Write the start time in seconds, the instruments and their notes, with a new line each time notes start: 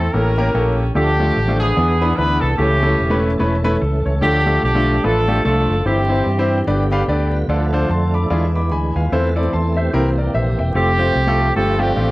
Already playing: horn section C4 E4 A4
0.13 fingered electric bass A1, grand piano A2 A#3 C#4 G4 A4, horn section C#4 G4 A#4
0.38 grand piano A#3 C#4 G4 A#4
0.54 fingered electric bass A#1, grand piano A#3 C#4 G4 A4
0.95 fingered electric bass D2, grand piano D3 A3 D4 F4 A4, tonewheel organ F3 A3 D4 A4, horn section D4 G4
1.20 grand piano A3 D4 F4 A4
1.36 fingered electric bass A1
1.48 grand piano A3 D4 F4 C5
1.60 horn section B3 D4 G#4
1.76 fingered electric bass E2, grand piano E3 B3 D4 E4 G#4, tonewheel organ E3 B3 D4 G#4
2.01 grand piano B3 D4 E4 B4
2.17 fingered electric bass D2, grand piano B3 D4 E4 B4, horn section B4
2.41 fingered electric bass C2, horn section A4
2.58 fingered electric bass C#2, grand piano C#3 A3 C#4 E4 A4, tonewheel organ E3 A3 B3 A4, horn section C#4 E4 G4
2.64 tonewheel organ C#4
2.82 grand piano A3 C#4 E4 A4
2.99 fingered electric bass E1
3.10 grand piano A3 C#4 E4 B4
3.39 fingered electric bass E1, grand piano A3 C#4 E4 B4
3.64 grand piano A3 C#4 E4 B4
3.81 fingered electric bass C#2, grand piano A4
4.05 fingered electric bass C#2, grand piano A4 C#5
4.21 fingered electric bass D2, grand piano D3 A3 D4 F4 A4, tonewheel organ F3 A3 D4 A4, horn section D4 G4
4.46 grand piano A3 D4 F4 A4
4.63 fingered electric bass B1, horn section D4 G4
4.75 grand piano A3 D4 F4 A4
5.04 fingered electric bass A1, grand piano A3 D4 F4 B4, horn section D4 F4 A4
5.28 grand piano A3 D4 F4 G4
5.44 fingered electric bass C2, grand piano A3 D4 F4 A4, horn section D4 F4 A4
5.69 fingered electric bass F#1
5.85 fingered electric bass G1, grand piano G2 C4 E4 G4 C5, tonewheel organ E3 G3 C4 G4, horn section C4 E4 G4
6.09 grand piano C4 E4 G4 C5
6.26 fingered electric bass G2
6.39 grand piano C4 E4 G4 C5
6.67 fingered electric bass G1, grand piano G2 D4 G4 B4 D5, tonewheel organ D3 G3 B3 G4
6.92 grand piano D4 G4 B4 F5
7.08 fingered electric bass D2, grand piano D4 G4 B4 D5, tonewheel organ A4 D5
7.32 tonewheel organ F4 B4
7.48 fingered electric bass D2, grand piano D3 D4 F4 A4 D5, tonewheel organ F3 A3 D4 G#4
7.54 tonewheel organ A4
7.73 grand piano D4 F4 A4 C5
7.89 fingered electric bass F2, grand piano A5 C6
8.14 grand piano B5 D6
8.30 fingered electric bass E2, grand piano E3 E4 F4 G#4 D5, tonewheel organ E3 G#3 D4 F4
8.55 tonewheel organ B3 E4, grand piano B5 D6
8.71 fingered electric bass D2, tonewheel organ D4 G#4, grand piano G#5 B5
8.95 fingered electric bass D#2, tonewheel organ F4 B4, grand piano F5 G#5
9.12 fingered electric bass E2, tonewheel organ E3 A3 C4 A4, grand piano E3 C4 E4 A4 C5
9.36 grand piano C4 E4 A4 D5
9.53 fingered electric bass E2, tonewheel organ E4 A4, grand piano A5 C6
9.76 tonewheel organ G4 C5, grand piano C5 E5
9.93 fingered electric bass C2, grand piano C3 C4 E4 G4 A#4, tonewheel organ E3 A#3 C4 G4
10.18 grand piano A#4 D5
10.34 fingered electric bass A#1, grand piano C5 E5
10.59 fingered electric bass E1, grand piano E5 G5
10.74 fingered electric bass F1, tonewheel organ F3 A3 C4 A4, grand piano A3 C4 F4 A4, horn section C4 G4
10.99 grand piano A3 C4 F4 C5
11.15 fingered electric bass C2
11.27 grand piano A3 C4 F4 A4
11.56 fingered electric bass G1, grand piano G2 A3 C4 F4 G4, tonewheel organ F3 A3 C4 G4, horn section C4 F4 A4
11.79 grand piano A3 C4 F4 G4, horn section C4 D4 G4
11.96 fingered electric bass A1, grand piano A3 C4 F4 G4